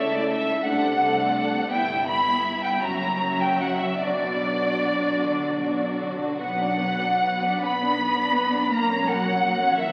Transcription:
Already playing: C#2 C#3 A3 E4 A4 E5
0.13 D5
0.29 E5
0.63 C2 C3 A3 D4 A4 D5 F#5
0.98 A3 D4 A4 D5
1.69 G1 G2 B3 E4 E5 G5
2.04 B3 E4 E5 B5
2.63 G5
2.79 F#1 F#2 F#3 C#4 F#4 E5 A#5
3.19 F#3 C#4 F#4 E5
3.41 G5
3.60 F#5
3.79 E5
3.99 B1 B2 F#3 D4 F#4 D5
4.39 F#3 D4 F#4 D5
5.20 B1 D3
5.60 B2 F#3 D4 F#4 D5
6.01 D3
6.40 B1 F#3 B3 B4 F#5
6.59 D4 D5
6.79 B3 B4
7.01 D4 D5
7.23 B3 B4
7.42 D4 D5
7.62 B1 B3 B4 B5
7.81 D4 D5
8.00 B3 B4
8.17 D4 D5
8.34 B3 B4
8.52 D4 D5
8.71 B1 A#3 A#4 A#5
8.89 C#4 C#5
9.07 F#3 A#3 A#4 F#5
9.25 C#4 C#5
9.42 A#3 A#4
9.59 C#4 C#5
9.77 B1 E3 A#3 A#4 E5

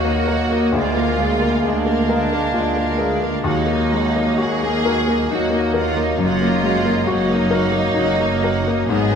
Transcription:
Already playing: D#2 F#3 G#3 A#3 F#4 A#4 D#5
0.05 A#3 D#4 D#5
0.27 F#3 F#4 A#4 F#5
0.51 A#3 D#4 D#5
0.72 D2 G#3 A#3 G#4 D5 F5
0.76 D2 G#3 F4
0.95 A#3 A#4 F5
1.17 G#3 G#4 D5
1.39 A#3 A#4 F5
1.63 D2 G#3 A#3 D4 G#4 D5
1.67 D2 G#3 F5
1.86 A#3 A#4 F5
2.08 G#3 G#4 A#4 D5
2.31 A#3 A#4 F5
2.54 D2 G#3 F4 G#4 D5
2.76 A#3 A#4 F5
2.98 G#3 G#4 A#4 D5
3.21 A#3 A#4 F5
3.44 D#2 F#3 A#3 D#4 F#4 D#5 F#5
3.48 F#3
3.66 A#3 D#4 D#5
3.91 F#3 G#3 F#4 F#5
4.14 A#3 D#4 D#5
4.38 D#2 F#3 F#4 G#4 F#5
4.42 D#2 F#3
4.63 A#3 D#4 D#5
4.85 F#3 F#4 A#4 F#5
5.07 A#3 D#4 D#5
5.31 D#2 F#3 A#3 D#4 F#4 D#5 F#5
5.50 A#3 D#4 D#5
5.74 F#3 F4 F#4 A#4
5.79 F#5
5.96 A#3 D#4
6.00 D#4 D#5
6.18 F#2 F#4
6.22 F#1 F#3 A#3 F4 D#5 F#5
6.41 A#3 D#4
6.48 D#5
6.63 F#3 G#3 F#4
6.69 F#5
6.86 A#3 D#4
6.91 D#5
7.07 F#1 F#2 F#3 D#4 F#4 D#5
7.12 A#3 F#5
7.30 A#3 D#4 D#5
7.51 F#3 F#4 A#4
7.55 F#5
7.72 A#3 D#4
7.77 D#5
7.94 F#1 F#2 F#3 D#4 F#4
7.99 F#5
8.18 A#3 D#4 D#5
8.41 F#3 F#4 A#4
8.45 F#5
8.66 A#3 D#4 D#5
8.88 G#1 G#2 F#3 G#3 B3 G#4 D#5
8.93 D#5
9.11 B3

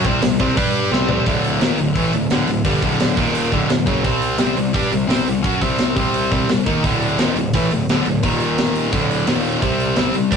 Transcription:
0.05 C2 C3 G3 C4, kick
0.21 C2 C3 G3, snare, open hi-hat
0.40 C2 C3 G3 C4, kick
0.57 G2 G3 D4 G4, kick, open hi-hat
0.91 C2 C3 G3 C4, snare
1.09 C2 C3 G3 C4, floor tom
1.26 D1 D2 A2 D3, kick, open hi-hat
1.44 open hi-hat
1.60 D#1 D#2 A#2 D#3, snare, open hi-hat
1.78 D1 D2 A2, open hi-hat
1.95 A1 A2 E3 A3, kick, open hi-hat
2.13 D1 D2 A2, open hi-hat
2.30 D1 D2 A2 D3, snare, open hi-hat
2.47 D1 D2 A2, open hi-hat
2.64 G1 G2 D3 G3, kick, open hi-hat
2.82 D1 D2 A2 D3, kick, open hi-hat
3.00 snare, open hi-hat
3.17 D#1 D#2 A#2 D#3, kick, open hi-hat
3.35 open hi-hat
3.52 D1 D2 A2 D3, kick, open hi-hat
3.69 D1 D2 A2, snare, open hi-hat
3.86 F#1 F#2 C#3 F#3, kick, open hi-hat
4.03 C2 C3 G3 C4, kick, open hi-hat
4.22 open hi-hat
4.38 C2 C3 G3 C4, snare, open hi-hat
4.57 C2 C3 G3, open hi-hat
4.73 G2 G3 D4 G4, kick, open hi-hat
4.91 C2 C3 G3, open hi-hat
5.07 C2 C3 G3 C4, snare, open hi-hat
5.26 C2 C3 G3, open hi-hat
5.42 F#2 F#3 C#4 F#4, kick, open hi-hat
5.60 C2 C3 G3 C4, kick, open hi-hat
5.78 snare, open hi-hat
5.95 C2 C3 G3 C4, kick, open hi-hat
6.14 open hi-hat
6.31 C2 C3 G3 C4, kick, open hi-hat
6.49 C2 C3 G3, snare, open hi-hat
6.66 D#2 D#3 A#3 D#4, kick, open hi-hat
6.84 D1 D2 A2 D3, kick, open hi-hat
7.02 open hi-hat
7.18 D#1 D#2 A#2 D#3, snare, open hi-hat
7.36 D1 D2 A2, open hi-hat
7.53 A1 A2 E3 A3, kick, open hi-hat
7.71 D1 D2 A2, open hi-hat
7.88 D1 D2 A2 D3, snare, open hi-hat
8.06 D1 D2 A2, open hi-hat
8.23 D#1 D#2 A#2 D#3, kick, open hi-hat
8.40 open hi-hat
8.58 snare, open hi-hat
8.75 open hi-hat
8.91 D1 D2 A2 D3, kick, open hi-hat
9.11 open hi-hat
9.26 D#1 D#2 A#2 D#3, snare, open hi-hat
9.45 open hi-hat
9.62 C2 C3 G3 C4, kick, open hi-hat
9.80 open hi-hat
9.96 C2 C3 G3 C4, snare, open hi-hat
10.13 C2 C3 G3, open hi-hat
10.31 G2 G3 D4 G4, kick, open hi-hat

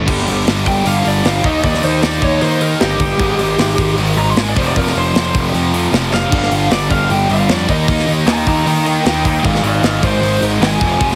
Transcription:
0.05 G1 G2 D3 G3, kick, crash
0.19 snare
0.26 G1 G2 D3 G3, open hi-hat
0.44 G1 G2 D3 G3, snare, open hi-hat
0.63 G1 G2 D3 G3, kick, open hi-hat
0.68 G2 G5
0.83 G1 G2 D3 G3 F5, open hi-hat
1.03 G1 G2 D3 G3, open hi-hat
1.08 D5
1.24 G1 G2 D3 G3 F5, snare, open hi-hat
1.43 D#2 D#3 A#3 D#4 D#5, kick, open hi-hat
1.63 D#2 D#3 A#3 D#4 D5, kick, open hi-hat
1.74 snare
1.82 D#2 D#3 A#3 D#4 C5, open hi-hat
2.01 D#2 D#3 A#3 D#4 D5, snare, open hi-hat
2.21 D#2 D#3 A#3 D#4 C#5, kick, open hi-hat
2.41 D#3 A#3 D#4 C5, open hi-hat
2.60 D#3 A#3 D#4 A#4, open hi-hat
2.80 G1 D#3 A#3 D#4 G4, snare, open hi-hat
3.00 D#3 A#3 D#4, kick, open hi-hat
3.19 G#1 G#2 D#3 G#3, kick, open hi-hat
3.39 G#1 G#2 D#3 G#3, open hi-hat
3.58 G#1 G#2 D#3 G#3, snare, open hi-hat
3.78 G#1 G#2 D#3 G#3, kick, open hi-hat
3.97 G#1 G#2 D#3 G#3, open hi-hat
4.16 G#1 G#2 D#3 G#3 A#5, open hi-hat
4.30 C6
4.36 G#1 G#2 D#3 G#3 G#5, snare, open hi-hat
4.49 D5
4.56 F1 F2 C3 F3 C5, kick, open hi-hat
4.68 D5
4.76 F1 F2 C3 F3 A#4, kick, open hi-hat
4.87 snare
4.94 F1 F2 C3 F3 C5, open hi-hat
5.14 F1 F2 C3 F3, snare, open hi-hat
5.34 F1 F2 C3 F3, kick, open hi-hat
5.52 F2 C3 F3, open hi-hat
5.72 F2 C3 F3, open hi-hat
5.76 F2
5.92 F1 F2 C3 F3, snare, open hi-hat
6.11 F2 C3 F3 F5, snare
6.31 G1 G2 D3 G3, kick, crash
6.43 snare
6.51 G1 G2 D3 G3, open hi-hat
6.70 G1 G2 D3 G3 D5, snare, open hi-hat
6.90 G1 G2 D3 G3 F5, kick, open hi-hat
7.10 G1 G2 D3 G3 G5, open hi-hat
7.29 G1 G2 D3 G3 F5, open hi-hat
7.48 F2 G2 D3 G3 D5, snare, open hi-hat
7.68 D#2 D#3 A#3 D#4 D#5, kick, open hi-hat
7.87 D#2 D#3 A#3 D#4, kick, open hi-hat
7.99 snare
8.05 D#2 D#3 A#3 D#4, open hi-hat
8.26 D#2 D#3 A#3 D#4 G5 A#5, snare, open hi-hat
8.46 D#2 D#3 A#3 D#4 G5 A#5, kick, open hi-hat
8.65 D#3 A#3 D#4 G5 A#5, open hi-hat
8.85 D#3 A#3 D#4 D#5 G5, open hi-hat
9.04 D#2 D#3 A#3 D#4 D#5 G5, snare, open hi-hat
9.25 D#3 A#3 D#4 D#5 G5, kick, open hi-hat
9.43 G#1 G#2 D#3 G#3 D5 F5, kick, open hi-hat
9.55 snare
9.63 G#1 G#2 D#3 G#3 D5 F5, open hi-hat
9.82 G#1 G#2 D#3 G#3 D5 F5, snare, open hi-hat
10.02 G#1 G#2 D#3 G#3 C5, kick, open hi-hat
10.21 G#1 G#2 D#3 G#3, open hi-hat
10.41 G#1 G#2 D#3 G#3, open hi-hat
10.60 G#1 G#2 D#3 G#3 G#5, snare, open hi-hat
10.80 F1 F2 C3 F3, kick, open hi-hat
11.00 F1 F2 C3 F3, kick, open hi-hat
11.12 snare

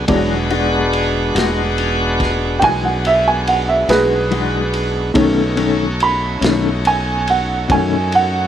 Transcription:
Already playing: D5
0.08 E1 E3 F#3 G#3 B3 D4 F#4, kick, ride
0.50 G#3 D4 F#4, ride
0.93 ride
1.35 E1 G#3 D4 F#4, snare, ride
1.78 ride
2.20 kick, snare, ride
2.59 B1 E3 G#3 D4 F#4 G5, kick, ride
2.64 G#5
2.85 F#5
3.05 E5, ride
3.28 G#5
3.47 F#5, ride
3.69 E5
3.88 B1 G#3 D4 F#4 G#4 B4, snare, ride
4.31 E3 G#3 D4 F#4, ride
4.74 ride
5.14 B1 B2 D#3 A3 C#4, kick, ride
5.18 C#4 D#4 F#4
5.57 D#3 A3 C#4, ride
6.00 B5, ride
6.41 B1 D#3 A3 C#4, snare, ride
6.85 G#5, ride
7.28 F#5, ride
7.68 F#2 B2 D#3 A3 C#4 G#5, kick, ride
8.12 F#5, ride

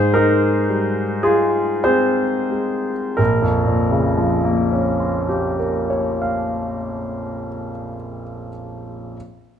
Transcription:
Already playing: G#2 G#4 C5
0.14 G#3 D#4 A#4
0.69 G3
1.23 G#3 F4 G#4
1.84 C4 G#4 C5
2.51 G#3
3.17 A#1 A#4
3.42 F2
3.66 A#2
3.91 C#3
4.17 F3
4.44 A#3
4.72 C#4
5.00 F4
5.29 G4
5.59 A#4
5.90 C#5
6.22 F5

